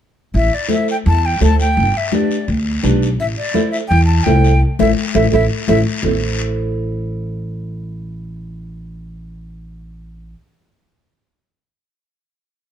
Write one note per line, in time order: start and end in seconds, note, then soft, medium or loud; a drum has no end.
0.34 0.48 A1 medium
0.34 0.56 E5 medium
0.34 high conga soft
0.34 long guiro medium
0.54 0.71 D5 medium
0.68 0.94 E4 medium
0.68 0.94 A4 medium
0.68 0.94 C5 medium
0.68 0.87 E5 medium
0.68 high conga medium
0.68 short guiro medium
0.88 0.97 G5 medium
0.88 short guiro medium
1.05 1.34 E2 loud
1.05 1.27 A5 loud
1.05 high conga soft
1.05 long guiro medium
1.26 1.42 G5 medium
1.40 1.78 D2 medium
1.40 1.66 E4 medium
1.40 1.66 A4 medium
1.40 1.66 C5 medium
1.40 1.59 A5 loud
1.40 high conga medium
1.40 short guiro medium
1.60 1.99 G5 loud
1.60 short guiro medium
1.77 1.91 G1 medium
1.77 high conga soft
1.77 long guiro medium
1.97 2.16 E5 medium
2.12 2.37 D4 medium
2.12 2.37 G4 medium
2.12 2.38 B4 medium
2.12 2.49 D5 medium
2.12 high conga medium
2.12 short guiro medium
2.31 short guiro medium
2.48 2.77 D2 medium
2.48 high conga soft
2.48 long guiro medium
2.83 3.19 B1 medium
2.83 3.08 D4 medium
2.83 3.08 G4 medium
2.83 3.09 B4 medium
2.83 high conga medium
2.83 short guiro medium
3.02 short guiro medium
3.19 3.33 A1 loud
3.19 3.26 E5 medium
3.19 high conga soft
3.19 long guiro medium
3.38 3.70 D5 medium
3.54 3.79 E4 medium
3.54 3.80 A4 medium
3.54 3.80 C5 medium
3.54 high conga medium
3.54 short guiro medium
3.71 3.77 E5 medium
3.71 short guiro medium
3.88 4.19 E2 loud
3.88 4.05 G5 loud
3.88 high conga soft
3.88 long guiro medium
4.05 4.25 A5 loud
4.23 4.62 C2 medium
4.23 4.51 E4 medium
4.23 4.51 A4 medium
4.23 4.51 C5 medium
4.23 4.60 G5 loud
4.23 high conga medium
4.23 short guiro medium
4.44 short guiro medium
4.79 4.93 A1 medium
4.79 4.91 E4 medium
4.79 4.91 A4 medium
4.79 4.91 C5 medium
4.79 4.91 E5 medium
4.79 high conga loud
4.79 long guiro loud
5.15 5.28 A1 medium
5.15 5.26 E4 medium
5.15 5.27 A4 medium
5.15 5.26 C5 medium
5.15 5.26 E5 medium
5.15 high conga medium
5.15 long guiro medium
5.32 5.46 A1 medium
5.32 5.45 E4 medium
5.32 5.45 A4 medium
5.32 5.45 C5 medium
5.32 5.44 E5 loud
5.32 high conga medium
5.32 long guiro medium
5.68 5.82 A1 medium
5.68 5.80 E4 medium
5.68 5.80 A4 medium
5.68 5.80 C5 loud
5.68 5.79 E5 medium
5.68 high conga loud
5.68 long guiro medium
6.02 10.33 A1 medium
6.02 10.32 E4 medium
6.02 10.33 A4 medium
6.02 low conga medium
6.02 long guiro medium
6.07 10.35 C5 medium